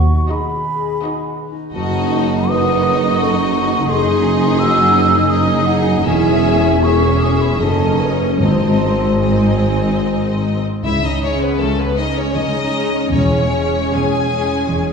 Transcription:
Already playing: D#2 D#3 F#3 B3 F#4 B4 C#6
0.06 D#4
0.28 D#4 F#4 G#4 D#5 B5
0.55 B4
0.80 D#5
1.02 D#4 F#4 B4 D#5
1.28 F#4
1.52 D#4
1.73 F#1 F#2 D#4 F#4 D#5 A5
2.00 F#3
2.11 D#4
2.25 D#4
2.49 F#3 D#4 F#4 B4 D#5 D#6
2.74 F#4
2.98 D#5
3.21 F#4 A4 C#6
3.44 D#4
3.67 F#3
3.89 F#1 F#2 D#4 G#4 D#5 C6
4.13 F#3
4.36 D#4
4.59 F#3 F#4 E6
4.82 G#4
4.93 D#4
5.06 D#5
5.30 D#4 G#4 D#5 D#6
5.55 D#4
5.66 F#5
5.79 F#3
6.03 E1 E2 C#4 E4 G#4 E5 G#5
6.29 E3
6.57 C#4
6.82 C#4 E4 G#4 E5 C#6
7.09 C#5
7.23 D#6
7.31 E4 C#6
7.41 B5
7.51 C#6
7.59 F#1 F#2 C#4 D#4 A4 D#5 A5
7.87 C#4
7.99 B4
8.13 D#4 D#5
8.38 G#1 G#2 C4 D#4 C5 D#5 A5
8.67 D#3
8.94 C4
9.13 A5
9.20 C4 D#4 D#5 G#5
9.48 D#5
9.76 C5
10.04 D#5
10.31 D#4
10.59 C4
10.84 C#2 C#3 C#4 E4 G#4 E5
11.04 D#4 D#5
11.11 C#4
11.23 G#3 C#4 C#5
11.36 C#5
11.42 B3 B4
11.60 C#2 A3 G#4 A4
11.80 B3 B4
11.85 G#5
11.98 G#3 C#4 D#4 D#5
12.10 C#5
12.17 C#4 C#5
12.34 C#2 D#4 G#4 D#5
12.59 C#4
12.72 G#3 C#4
12.85 G#3
13.11 E1 E2 G#3 C#4 C#5
13.37 C#4
13.52 G#3 C#4
13.65 C#5
13.92 E1 E2 G#4 G#5
14.19 G#5
14.32 G#3 C#4
14.43 C#5
14.69 E1 E2 G#4

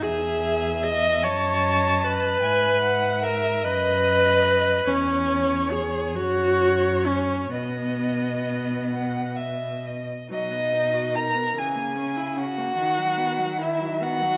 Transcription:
0.02 E2 G#4 E5
0.83 D#5
1.23 F#2 C#5 D#5 A5
2.03 B4
2.41 G#2 E5 G#5
2.83 F#5
3.23 A#4 E5
3.64 F#2 B4 D#5
4.87 E2 C#4 C#5
5.71 G#4
6.14 F#2 F#4 C#5
7.07 C#4
7.52 B2 B3 D#5
8.93 F#5
9.37 E5
9.86 D#5
10.29 B2 F#3 D#4 D#5
10.51 B3
10.73 D#4
10.93 F#4
11.15 D#4 A#4 A#5
11.35 B3
11.56 C#3 E3 G#4 G#5
11.75 A#3
11.96 C#4
12.16 E4
12.37 C#4 F#4 F#5
12.57 A#3
12.78 D#3
12.98 F#3
13.17 B3
13.39 F#3
13.59 D#3 E4 E5
13.80 F#3
14.01 B3 F#4 F#5
14.21 F#3

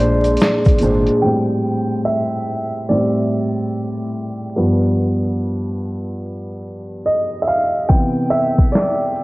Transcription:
Already playing: A#1 A#2 G#3 D4 D5
0.00 C5, closed hi-hat
0.24 closed hi-hat, shaker
0.37 closed hi-hat, shaker
0.42 snare
0.65 kick, closed hi-hat, shaker
0.78 A#2 G#3, closed hi-hat, shaker
0.83 G#1 D4 C5
1.07 closed hi-hat, shaker
1.22 A2 G3 C4 G5
2.05 E5
2.89 A2 G3 C4 D5
4.56 G2 F3 B3
7.06 D#5
7.42 E5
7.47 F5
7.89 C3 E3 B3 G5, kick, closed hi-hat
8.30 E5, closed hi-hat
8.58 kick, closed hi-hat
8.72 D5, snare, closed hi-hat
9.01 closed hi-hat
9.16 closed hi-hat

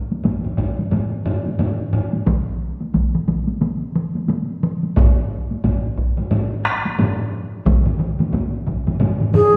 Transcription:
0.12 taiko high
0.24 taiko, taiko low-mid, taiko high
0.45 taiko low-mid
0.58 taiko, taiko low-mid, taiko high
0.79 taiko high
0.91 taiko low-mid, taiko high
1.26 taiko low-mid
1.46 taiko high
1.59 taiko low-mid, taiko high
1.93 taiko low-mid
2.13 taiko high
2.26 taiko, taiko mid, taiko high
2.81 taiko high
2.94 taiko, taiko mid, taiko high
3.15 taiko mid
3.28 taiko, taiko mid, taiko high
3.48 taiko high
3.61 taiko mid, taiko high
3.96 taiko mid
4.15 taiko high
4.28 taiko mid, taiko high
4.63 taiko mid
4.83 taiko high
4.96 taiko, taiko low-mid, taiko high
5.51 taiko high
5.64 taiko, taiko low-mid, taiko high
5.98 taiko
6.17 taiko low-mid, taiko high
6.31 taiko low-mid, taiko high
6.65 taiko rim
6.85 taiko high
6.99 taiko low-mid, taiko high
7.66 taiko, taiko low-mid, taiko mid, taiko high
7.86 taiko low-mid, taiko mid
7.99 taiko low-mid, taiko mid
8.19 taiko low-mid, taiko mid, taiko high
8.33 taiko, taiko low-mid, taiko mid, taiko high
8.67 taiko, taiko low-mid, taiko mid, taiko high
8.87 taiko low-mid, taiko mid, taiko high
9.00 taiko low-mid, taiko mid, taiko high
9.20 taiko low-mid, taiko mid
9.34 G#4, taiko low-mid, taiko mid

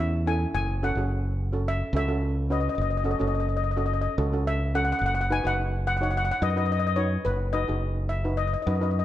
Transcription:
Already playing: E2
0.00 E5
0.26 C#4 E4 A4 G#5
0.55 F#1 G#5
0.83 C#4 F#4 A4 F#5
0.95 F#1 C#4 F#4 G#4
1.52 C#4 F#4 A4
1.68 E5
1.93 C#2 C#4 F#4 A4 E5
2.08 C#4 F#4 A4
2.50 C#4 F#4 B4 D#5
2.60 D#5
2.69 D#5
2.75 F#1 D#5
2.81 D#5
2.90 D#5
2.97 D#5
3.04 C#4 F#4 A4 D#5
3.11 D#5
3.19 F#1 C#4 F#4 A4 D#5
3.27 D#5
3.35 D#5
3.40 D#5
3.49 D#5
3.57 D#5
3.64 D#5
3.71 D#5
3.77 C#4 F#4 A4 D#5
3.86 D#5
3.93 D#5
4.01 D#5
4.18 C#2 C#4 F#4 A4
4.32 C#4 F#4 A4
4.47 E5
4.74 C#4 F#4 A4 F#5
4.85 F#5
4.92 F#5
4.99 F#1 F#5
5.06 F#5
5.15 F#5
5.21 F#5
5.30 D#4 F#4 B4 G#5
5.44 F#1 D#4 F#4 B4 F#5
5.87 F#5
5.97 D#4 F#5
6.01 F#4 C#5 F#5
6.11 F#5
6.17 F#5
6.25 F#5
6.31 F#5
6.41 F#2 D#4 F#4 B4 D#5
6.50 D#5
6.56 D#4 F#4 B4 D#5
6.66 D#5
6.72 D#5
6.79 D#5
6.87 D#5
6.96 D#4 F#4 B4 C#5
7.25 F#1 B4
7.53 D#4 F#4 B4 D#5
7.68 F#1 D#4 F#4 G#4
8.09 E5
8.24 D#4 F#4 B4
8.37 D#5
8.47 D#5
8.54 D#5
8.62 D#4 D#5
8.67 F#2 F#4 B4 D#5
8.75 D#5
8.81 D#4 F#4 B4 D#5
8.91 D#5
8.99 D#5

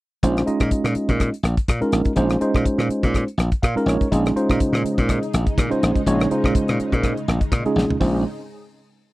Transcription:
0.23 A#1 G#3 C#4 D#4 F4 C5, kick, closed hi-hat
0.37 cross-stick, closed hi-hat
0.46 G#3 C#4 D#4 F4 D#5, closed hi-hat
0.60 A#2, kick, cross-stick, closed hi-hat
0.71 kick, closed hi-hat
0.84 A#2, cross-stick, closed hi-hat
0.95 muted slap bass stroke, closed hi-hat
1.09 A#2, kick, closed hi-hat
1.20 kick, cross-stick, closed hi-hat
1.34 closed hi-hat
1.43 A#1, cross-stick, closed hi-hat
1.57 kick, closed hi-hat
1.68 A#2, kick, cross-stick, closed hi-hat
1.81 G#3 C#4 D#4 F4 A#4, muted slap bass stroke, closed hi-hat
1.92 A#1, cross-stick, closed hi-hat
2.05 kick, closed hi-hat
2.16 A#1 G#3 C#4 D#4 F4 C5, kick, closed hi-hat
2.29 cross-stick, closed hi-hat
2.41 G#3 C#4 D#4 F4 C5, closed hi-hat
2.54 A#2, kick, cross-stick
2.65 muted slap bass stroke, kick, closed hi-hat
2.78 A#2, cross-stick, closed hi-hat
2.89 muted slap bass stroke, closed hi-hat
3.03 A#2, kick, closed hi-hat
3.14 kick, cross-stick, closed hi-hat
3.28 closed hi-hat
3.38 A#1, cross-stick, closed hi-hat
3.52 kick, closed hi-hat
3.62 A#2 F5, kick, cross-stick, closed hi-hat
3.75 G#3 C#4 D#4 F4 A#4, muted slap bass stroke, closed hi-hat
3.86 A#1 C#5, cross-stick, closed hi-hat
4.01 kick, closed hi-hat
4.11 A#1 C#3 G#3 C#4 D#4 F4 G#4, kick, closed hi-hat
4.26 cross-stick, closed hi-hat
4.35 G#3 C#4 D#4 F4 C5, muted slap bass stroke, closed hi-hat
4.50 A#2, kick, cross-stick, closed hi-hat
4.60 muted slap bass stroke, kick, closed hi-hat
4.73 A#2, cross-stick, closed hi-hat
4.84 muted slap bass stroke, closed hi-hat
4.98 A#2, kick, closed hi-hat
5.09 kick, cross-stick, closed hi-hat
5.23 closed hi-hat
5.33 A#1, cross-stick, closed hi-hat
5.46 kick, closed hi-hat
5.58 A#2, kick, cross-stick, closed hi-hat
5.70 G#3 C#4 D#4 F4 C5, muted slap bass stroke, closed hi-hat
5.83 A#1, cross-stick, closed hi-hat
5.96 muted slap bass stroke, kick, closed hi-hat
6.07 A#1 G#3 C#4 D#4 F4 C#5, kick, closed hi-hat
6.20 cross-stick, closed hi-hat
6.30 G#3 C#4 D#4 F4 C5, muted slap bass stroke, closed hi-hat
6.44 A#2, kick, cross-stick
6.55 muted slap bass stroke, kick, closed hi-hat
6.68 A#2, cross-stick, closed hi-hat
6.80 muted slap bass stroke, closed hi-hat
6.92 A#2, kick, closed hi-hat
7.03 kick, cross-stick, closed hi-hat
7.17 closed hi-hat
7.28 A#1, cross-stick, closed hi-hat
7.41 kick, closed hi-hat
7.52 A#2, kick, cross-stick, closed hi-hat
7.65 G#3 C#4 D#4 F4 G#4, muted slap bass stroke, closed hi-hat
7.76 A#1, snare
7.89 muted slap bass stroke, floor tom
8.00 A#1 C#3 G#3 C4 C#4 D#4 F4 C5, kick, open hi-hat

